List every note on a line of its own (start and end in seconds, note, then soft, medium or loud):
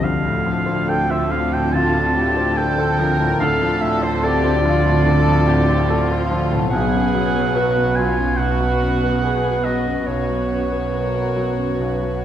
0.00 3.36 D2 medium
0.00 1.69 D2 medium
0.00 3.75 D3 medium
0.00 3.36 D3 medium
0.00 3.79 F3 soft
0.00 3.84 C4 soft
0.00 3.36 C4 medium
0.00 3.36 F4 medium
0.00 3.36 A4 medium
0.00 0.90 F5 medium
0.00 3.88 A5 soft
0.25 0.59 A2 soft
0.46 0.80 F3 soft
0.66 1.01 C4 soft
0.88 1.22 A4 soft
0.88 1.12 G5 medium
1.10 1.44 C4 soft
1.10 1.32 E5 medium
1.31 1.65 F3 soft
1.31 1.54 F5 medium
1.53 1.86 A2 soft
1.53 1.75 G5 medium
1.73 3.37 D2 soft
1.73 2.12 F4 medium
1.73 2.58 A5 medium
1.95 2.28 F3 soft
2.15 2.49 A2 soft
2.15 2.57 G4 medium
2.37 2.70 C4 soft
2.57 2.99 A4 medium
2.57 2.91 A4 soft
2.57 3.39 G5 medium
2.78 3.11 C4 medium
2.99 3.32 F3 medium
2.99 3.41 A#4 medium
3.20 3.53 A2 soft
3.40 6.68 D2 medium
3.40 5.03 D2 medium
3.40 6.68 D3 medium
3.40 6.68 C4 medium
3.40 6.68 F4 medium
3.40 6.68 A4 medium
3.40 4.24 A4 medium
3.40 3.82 F5 medium
3.62 3.95 F3 soft
3.81 4.15 A2 medium
3.81 4.04 E5 medium
4.03 4.37 C4 soft
4.03 4.25 C5 medium
4.23 4.66 G4 medium
4.23 4.57 A4 medium
4.23 6.30 D5 medium
4.44 4.77 C4 medium
4.66 4.99 F3 medium
4.66 5.07 F4 medium
4.85 5.19 A2 medium
5.06 6.67 D2 medium
5.06 5.49 A4 medium
5.28 5.61 F3 medium
5.48 5.81 A2 medium
5.48 5.90 G4 medium
5.69 6.02 C4 medium
5.90 6.72 F4 medium
5.90 6.23 A4 medium
6.11 6.43 C4 medium
6.31 6.64 F3 medium
6.52 6.72 A2 soft
6.52 10.44 B2 medium
6.58 10.48 F#3 soft
6.63 10.53 B3 soft
6.68 10.58 C#5 soft
6.68 7.97 F#5 loud
6.72 10.03 B1 medium
6.72 8.35 B1 medium
6.72 10.03 B2 medium
6.72 8.35 F#3 medium
6.72 8.35 B3 medium
6.72 7.54 G#4 medium
6.72 8.35 B4 medium
6.94 7.26 F#2 soft
7.14 7.47 F#3 soft
7.36 7.68 B3 soft
7.55 7.97 F#4 medium
7.55 7.89 B4 medium
7.76 8.09 B3 soft
7.95 8.30 F#3 soft
7.95 8.39 F4 medium
7.95 8.39 G#5 medium
8.19 8.52 F#2 soft
8.37 10.03 B1 soft
8.37 10.04 B3 medium
8.37 10.04 F#4 medium
8.37 9.23 F#4 medium
8.37 10.04 B4 medium
8.37 9.66 F#5 medium
8.60 8.93 F#3 soft
8.82 9.15 F#2 soft
9.03 9.36 B3 soft
9.23 9.65 G#4 medium
9.23 9.57 B4 soft
9.44 9.77 B3 soft
9.64 9.99 F#3 soft
9.64 10.07 F#4 medium
9.64 10.08 D#5 medium
9.86 10.20 F#2 soft
10.06 12.25 B1 medium
10.06 11.75 B1 soft
10.06 12.25 B2 medium
10.06 12.25 B3 medium
10.06 12.25 F#4 medium
10.06 10.82 B4 medium
10.06 12.25 C#5 medium
10.29 10.63 F#3 soft
10.51 10.84 F#2 soft
10.72 10.92 B3 soft
10.93 11.13 B3 soft
10.93 11.75 A#4 medium
11.15 11.49 B3 soft
11.36 11.70 F#3 soft
11.58 11.92 F#2 soft
11.80 12.25 B1 soft
11.80 12.25 B4 soft
12.02 12.25 F#3 soft